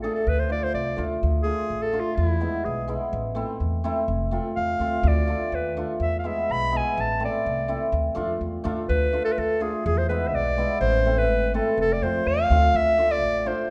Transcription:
0.02 hammered dulcimer A3 D4 G#4, clarinet A4
0.14 clarinet A4
0.27 upright bass D2, clarinet B4
0.39 clarinet C5
0.49 hammered dulcimer A3 D4 F4, clarinet D5
0.63 clarinet C5
0.74 upright bass C2, clarinet D5
0.96 upright bass D2, hammered dulcimer A3 D4 F4
1.23 upright bass D2
1.43 hammered dulcimer A3 D4 F4, clarinet G#4
1.70 upright bass A1
1.83 clarinet A4
1.92 hammered dulcimer A3 D4 F4
2.00 clarinet F4
2.15 upright bass E2, clarinet F4
2.26 clarinet E4
2.40 hammered dulcimer G#3 B3 E4
2.64 upright bass B1, clarinet G#4
2.88 hammered dulcimer G#3 B3 E4
3.13 upright bass A1
3.35 hammered dulcimer A3 C4 E4
3.60 upright bass E2
3.84 hammered dulcimer A3 C4 E4
4.08 upright bass F1
4.31 hammered dulcimer A3 C4 F4
4.56 upright bass E2, clarinet F5
4.79 upright bass D2, hammered dulcimer A3 C4 F4
5.03 upright bass D2
5.08 clarinet D5
5.27 hammered dulcimer A3 D4 F4
5.52 upright bass D#2, clarinet B4
5.77 hammered dulcimer A3 D4 F4
6.00 upright bass E2, clarinet E5
6.19 clarinet F5
6.24 hammered dulcimer G#3 B3 E4, clarinet E5
6.50 upright bass B1, clarinet B5
6.72 hammered dulcimer G#3 B3 E4
6.77 clarinet G#5
6.97 upright bass A1, clarinet A5
7.20 hammered dulcimer A3 C4 E4
7.25 clarinet D5
7.46 upright bass C2
7.68 hammered dulcimer A3 C4 E4
7.92 upright bass D2
8.15 upright bass F2, hammered dulcimer A3 D4 F4
8.41 upright bass E2
8.64 upright bass D2, hammered dulcimer A3 D4 F4
8.89 upright bass D2, clarinet B4
9.12 hammered dulcimer A3 D4 F4
9.25 clarinet A4
9.32 clarinet B4
9.38 upright bass D2, clarinet A4
9.60 hammered dulcimer A3 D4 F4, clarinet G#4
9.86 upright bass E2, clarinet G#4
9.98 clarinet C5
10.09 hammered dulcimer G#3 B3 E4, clarinet B4
10.27 clarinet E5
10.33 upright bass B1, clarinet D5
10.58 hammered dulcimer G#3 B3 E4
10.81 upright bass A1, clarinet C5
11.05 hammered dulcimer A3 C4 E4
11.18 clarinet B4
11.29 upright bass G#1
11.54 hammered dulcimer A3 C4 E4, clarinet A4
11.78 upright bass F1, clarinet A4
11.93 clarinet D5
12.02 upright bass F2, hammered dulcimer A3 C4 F4, clarinet C5
12.26 upright bass E2, clarinet F5
12.50 upright bass D2, hammered dulcimer A3 C4 F4
12.74 upright bass D2, clarinet E5
12.98 hammered dulcimer A3 D4 F4
13.11 clarinet D5
13.22 upright bass A1
13.45 hammered dulcimer A3 D4 F4, clarinet C5

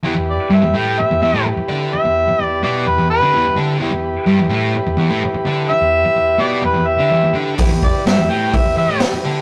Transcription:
0.03 distorted electric guitar E2 E3, transistor combo organ E4 G4 B4
0.15 distorted electric guitar E2
0.30 harmonica D5
0.50 distorted electric guitar G2 G3, harmonica E5
0.63 distorted electric guitar E2
0.74 distorted electric guitar A2 A3, harmonica G5
1.00 harmonica E5, muted distorted electric guitar stroke
1.11 distorted electric guitar E2
1.22 distorted electric guitar E2 E3, harmonica E5
1.33 distorted electric guitar A2 A3
1.45 muted distorted electric guitar stroke
1.57 muted distorted electric guitar stroke
1.68 distorted electric guitar D3 D4
1.93 harmonica E5, muted distorted electric guitar stroke
2.05 distorted electric guitar E2
2.29 muted distorted electric guitar stroke
2.40 distorted electric guitar E2, harmonica D5
2.63 distorted electric guitar B2 B3, harmonica D5
2.87 distorted electric guitar E2, harmonica B4
2.98 distorted electric guitar E2
3.10 harmonica B4
3.21 distorted electric guitar D3 D4
3.33 distorted electric guitar E2 E3
3.45 distorted electric guitar E2
3.56 distorted electric guitar D3 D4
3.79 distorted electric guitar E2 E3, transistor combo organ E4 G4
3.83 transistor combo organ B4
3.92 distorted electric guitar E2
4.26 distorted electric guitar G2 G3
4.40 distorted electric guitar E2
4.49 distorted electric guitar A2 A3
4.74 muted distorted electric guitar stroke
4.87 distorted electric guitar E2
4.97 distorted electric guitar E2 E3
5.10 distorted electric guitar A2 A3
5.23 muted distorted electric guitar stroke
5.34 muted distorted electric guitar stroke
5.45 distorted electric guitar D3 D4
5.69 harmonica E5, muted distorted electric guitar stroke
5.82 distorted electric guitar E2
6.05 muted distorted electric guitar stroke
6.16 distorted electric guitar E2
6.39 distorted electric guitar B2 B3, harmonica D5
6.63 distorted electric guitar E2, harmonica B4
6.74 distorted electric guitar E2
6.87 harmonica E5
6.99 distorted electric guitar D3 D4
7.10 distorted electric guitar E2 E3
7.24 distorted electric guitar E2
7.34 distorted electric guitar D3 D4
7.58 distorted electric guitar E2 E3, transistor combo organ E4 G4 B4, kick, open hi-hat
7.70 distorted electric guitar E2
7.83 harmonica D5, kick
8.06 distorted electric guitar G2 G3, harmonica E5, snare, open hi-hat
8.18 distorted electric guitar E2
8.29 distorted electric guitar A2 A3, harmonica G5
8.53 harmonica E5, muted distorted electric guitar stroke, kick, open hi-hat
8.65 distorted electric guitar E2
8.76 distorted electric guitar E2 E3, harmonica E5
8.87 distorted electric guitar A2 A3
9.00 muted distorted electric guitar stroke, snare, open hi-hat
9.13 muted distorted electric guitar stroke
9.24 distorted electric guitar D3 D4

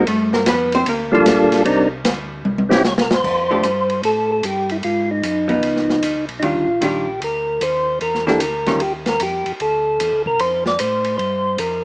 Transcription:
0.07 tonewheel organ G2, hollow-body jazz guitar A3 A4, ride
0.33 hollow-body jazz guitar A#3 A#4, snare
0.46 tonewheel organ F2, hollow-body jazz guitar B3 B4, snare, hi-hat pedal, ride
0.72 hollow-body jazz guitar C4 C5, ride
0.86 tonewheel organ D2, hollow-body jazz guitar A#3 A#4, ride
1.12 hollow-body jazz guitar F3 F4, tonewheel organ G3 A#3 D4 F4 A4
1.26 tonewheel organ A#1, snare, hi-hat pedal, ride
1.52 snare, ride
1.65 tonewheel organ C2 G3 C4 D4 D#4 A#4, ride
2.05 tonewheel organ D2, snare, hi-hat pedal, ride
2.45 tonewheel organ C2, high tom
2.58 high tom
2.69 tonewheel organ G3 C4 C#4 E4 G4, snare
2.84 tonewheel organ C#2 C#5, snare, hi-hat pedal
2.98 tonewheel organ C2 A#4, snare
3.11 tonewheel organ A#1 C5, snare
3.24 tonewheel organ F2, kick, crash
3.51 hollow-body jazz guitar F3 A3 D4 G4
3.63 tonewheel organ G2, hi-hat pedal, ride
3.90 ride
4.03 tonewheel organ A2 A4, ride
4.32 tonewheel organ A4
4.43 tonewheel organ G2 G4, hi-hat pedal, ride
4.69 tonewheel organ E4, ride
4.83 tonewheel organ G#2 F4, ride
5.11 tonewheel organ D#4
5.23 tonewheel organ F#2, hi-hat pedal, ride
5.48 hollow-body jazz guitar F3 B3 D#4, ride
5.63 tonewheel organ C#2, ride
5.76 snare
5.90 snare
6.03 tonewheel organ D2, hi-hat pedal, ride
6.15 tonewheel organ C#2
6.29 tonewheel organ B1, ride
6.39 tonewheel organ D#2 D#4, hollow-body jazz guitar D#3 G3 D4 F4, ride
6.45 tonewheel organ F4
6.55 tonewheel organ D2
6.68 tonewheel organ A#1
6.81 tonewheel organ A#1 G4, hollow-body jazz guitar D#3 G3 D4 F4, hi-hat pedal, ride
7.21 tonewheel organ D2 A#4, ride
7.61 tonewheel organ D#2 C5, hi-hat pedal, ride
8.01 tonewheel organ E2 A#4, ride
8.15 snare
8.27 hollow-body jazz guitar E3 A#3 D4 G4, tonewheel organ A4, snare
8.40 tonewheel organ D2 A#4, hi-hat pedal, ride
8.66 hollow-body jazz guitar D#3 G3 C#4 F4, snare, ride
8.80 tonewheel organ D#2 G4, ride
9.06 tonewheel organ A#4, snare, ride
9.20 tonewheel organ F2 G4, hi-hat pedal, ride
9.46 tonewheel organ F2, ride
9.60 tonewheel organ D2 A4, ride
10.00 tonewheel organ E2, hi-hat pedal, ride
10.13 tonewheel organ D2
10.26 tonewheel organ C2 A#4, kick
10.39 tonewheel organ F2 C5, ride
10.66 tonewheel organ D5, snare
10.79 tonewheel organ A2 C5, hi-hat pedal, ride
11.05 ride
11.18 tonewheel organ G2 C5, ride
11.58 tonewheel organ F2 A#4, hi-hat pedal, ride

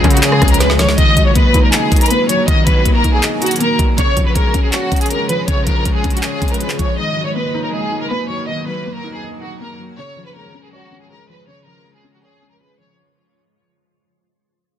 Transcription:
Already playing: felt piano C#3 F3 G#3 C#4 C#5, ambient pad C#3 F3 G#3 F4, violin section G#4
0.04 808-style bass C#3, felt piano C#4, kick, closed hi-hat
0.10 violin section F#4, closed hi-hat
0.17 closed hi-hat
0.23 violin section G#4, felt piano C#5, clap, closed hi-hat
0.32 cross-stick
0.42 808-style bass C#2, felt piano C#4, kick, cross-stick, closed hi-hat
0.48 violin section A#4, closed hi-hat
0.54 closed hi-hat
0.60 felt piano G#3, violin section B4, snare, closed hi-hat
0.70 snare
0.79 felt piano F3, violin section C#5, snare, closed hi-hat
0.89 snare
0.98 ambient pad D#3 F#3 A#3 F#4, felt piano D#3, violin section D#5, kick, closed hi-hat
1.17 felt piano F#3, kick, closed hi-hat
1.26 violin section C#5
1.35 felt piano A#3, violin section B4, kick, closed hi-hat
1.54 felt piano D#4, kick, closed hi-hat
1.64 violin section A#4
1.73 violin section G#4, felt piano D#5, clap, closed hi-hat
1.92 felt piano D#4, kick, closed hi-hat
1.96 closed hi-hat
2.01 violin section A#4, closed hi-hat
2.06 closed hi-hat
2.10 felt piano A#3, violin section B4, closed hi-hat
2.29 felt piano F#3, violin section C#5, closed hi-hat
2.48 felt piano D#3, violin section D#5, kick, closed hi-hat
2.67 felt piano F#3, violin section B4, kick, closed hi-hat
2.85 felt piano A#3, kick, closed hi-hat
2.95 violin section A#4
3.04 felt piano D#4, kick, closed hi-hat
3.13 violin section G#4
3.23 felt piano D#5, clap, closed hi-hat
3.42 felt piano D#4, violin section F#4, closed hi-hat
3.46 closed hi-hat
3.51 closed hi-hat
3.56 closed hi-hat
3.60 felt piano A#3, violin section A#4, closed hi-hat
3.79 felt piano F#3, kick, closed hi-hat
3.98 ambient pad C#3 F3 G#3 F4, felt piano C#3, violin section C#5, kick, closed hi-hat
4.16 felt piano F3, kick, closed hi-hat
4.26 violin section B4
4.35 felt piano G#3, violin section A#4, kick, closed hi-hat
4.54 felt piano C#4, kick, closed hi-hat
4.64 violin section G#4
4.73 violin section F#4, felt piano C#5, clap, closed hi-hat
4.92 felt piano C#4, kick, closed hi-hat
4.96 closed hi-hat
5.01 violin section G#4, closed hi-hat
5.06 closed hi-hat
5.10 felt piano G#3, violin section A#4, closed hi-hat
5.29 felt piano F3, violin section B4, closed hi-hat
5.48 felt piano C#3, violin section C#5, kick, closed hi-hat
5.66 felt piano F3, violin section A#4, kick, closed hi-hat
5.85 felt piano G#3, kick, closed hi-hat
5.95 violin section G#4
6.04 felt piano C#4, kick, closed hi-hat
6.10 violin section F#4, closed hi-hat
6.17 closed hi-hat
6.23 violin section G#4, felt piano C#5, clap, closed hi-hat
6.42 felt piano C#4, kick, closed hi-hat
6.48 violin section A#4, closed hi-hat
6.54 closed hi-hat
6.60 felt piano G#3, violin section B4, closed hi-hat
6.70 clap
6.79 felt piano F3, violin section C#5, kick, closed hi-hat
6.98 felt piano D#3, ambient pad D#3 F#3 A#3 F#4, violin section D#5
7.17 felt piano F#3
7.26 violin section C#5
7.35 felt piano A#3, violin section B4
7.54 felt piano D#4
7.64 violin section A#4
7.73 violin section G#4, felt piano D#5
7.92 felt piano D#4
8.01 violin section A#4
8.10 felt piano A#3, violin section B4
8.29 felt piano F#3, violin section C#5
8.48 felt piano D#3, violin section D#5
8.67 felt piano F#3, violin section B4
8.85 felt piano A#3
8.95 violin section A#4
9.04 felt piano D#4
9.13 violin section G#4
9.23 felt piano D#5
9.42 felt piano D#4, violin section F#4
9.60 felt piano A#3, violin section A#4
9.79 felt piano F#3
9.98 ambient pad C#3 F3 G#3 F4, felt piano C#3, violin section C#5
10.16 felt piano F3
10.26 violin section B4
10.35 felt piano G#3, violin section A#4
10.54 felt piano C#4
10.64 violin section G#4
10.73 violin section F#4, felt piano C#5
10.92 felt piano C#4
11.01 violin section G#4
11.10 felt piano G#3, violin section A#4
11.29 felt piano F3, violin section B4
11.48 felt piano C#3, violin section C#5
11.66 felt piano F3, violin section A#4
11.86 felt piano G#3
11.95 violin section G#4
12.04 felt piano C#4
12.13 violin section F#4
12.23 violin section G#4, felt piano C#5
12.42 felt piano C#4
12.51 violin section A#4
12.60 felt piano G#3, violin section B4
12.79 felt piano F3, violin section C#5

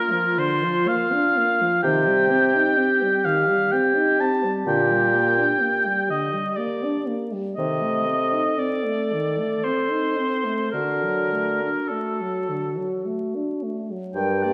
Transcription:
Already playing: french horn A#3, clarinet F4, oboe A#4
0.11 french horn F3
0.38 french horn D3, oboe C5
0.64 french horn F3
0.88 french horn A#3, oboe F5
1.13 french horn D4
1.37 french horn A#3
1.61 french horn F3
1.83 bassoon C3, french horn D#3, clarinet G4, oboe G5
2.07 french horn G3
2.30 french horn C4
2.55 french horn D#4
2.78 french horn C4
3.02 french horn G3
3.25 french horn D#3, oboe F5
3.49 french horn G3
3.72 french horn C4, oboe G5
3.96 french horn D#4
4.20 french horn C4, oboe A5
4.44 french horn G3
4.66 bassoon A#2, french horn D3, oboe G5
4.91 french horn G3
5.14 french horn A#3
5.38 french horn D4
5.61 french horn A#3
5.86 french horn G3
6.10 french horn D3, oboe D#5
6.34 french horn G3
6.56 french horn A#3, oboe D5
6.84 french horn D4
7.07 french horn A#3
7.32 french horn G3
7.56 bassoon C3, french horn D#3, clarinet A4, oboe D#5
7.82 french horn A3
8.06 french horn C4
8.33 french horn D#4
8.58 french horn C4, oboe D5
8.85 french horn A3
9.13 french horn D#3
9.39 french horn A3
9.64 french horn C4, oboe C5
9.90 french horn D#4
10.17 french horn C4
10.45 french horn A3
10.71 french horn D3, bassoon D3, clarinet F#4, oboe A#4
11.03 french horn F#3
11.33 french horn A3
11.63 french horn D4
11.88 french horn A3, oboe A4
12.21 french horn F#3
12.49 french horn D3
12.78 french horn F#3
13.05 french horn A3
13.35 french horn D4
13.63 french horn A3
13.91 french horn F#3
14.15 bassoon G2, clarinet A#4, oboe G5, flute G5
14.19 french horn G3
14.43 french horn A#3, clarinet G4, oboe D5

